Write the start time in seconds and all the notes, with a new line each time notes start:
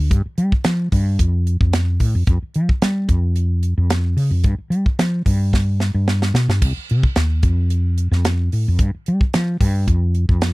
0.11 G2, kick, closed hi-hat
0.26 muted fretless electric bass stroke
0.38 G3, closed hi-hat
0.52 kick
0.64 F3, snare, closed hi-hat
0.92 G2, kick, open hi-hat
1.19 F2, kick, closed hi-hat
1.47 closed hi-hat
1.61 F2, kick
1.73 snare, closed hi-hat
2.00 A2, kick, open hi-hat
2.15 F2
2.27 F2, kick, closed hi-hat
2.42 muted fretless electric bass stroke
2.54 F3, closed hi-hat
2.69 kick
2.82 G3, snare, closed hi-hat
3.08 F2, kick, closed hi-hat
3.36 closed hi-hat
3.63 closed hi-hat
3.78 F2
3.90 snare, closed hi-hat
4.17 C#3, open hi-hat
4.31 F2
4.44 G2, kick, closed hi-hat
4.58 muted fretless electric bass stroke
4.70 G3, closed hi-hat
4.86 kick
4.99 F3, snare, closed hi-hat
5.26 G2, kick, open hi-hat
5.53 kick, snare
5.80 snare
5.94 G2
6.08 snare
6.22 snare
6.34 B2, snare
6.48 G2, snare
6.62 C2, kick, crash
6.90 C3, closed hi-hat
7.03 kick
7.16 D#2, snare, closed hi-hat
7.43 F2, kick, closed hi-hat
7.70 closed hi-hat
7.98 closed hi-hat
8.11 F2, snare
8.25 snare, closed hi-hat
8.52 A2, open hi-hat
8.68 F2
8.79 G2, kick, closed hi-hat
8.95 muted fretless electric bass stroke
9.06 G3, closed hi-hat
9.21 kick
9.34 F3, snare, closed hi-hat
9.61 G2, kick, open hi-hat
9.87 F2, kick, closed hi-hat
10.15 closed hi-hat
10.29 F2, kick
10.41 snare, closed hi-hat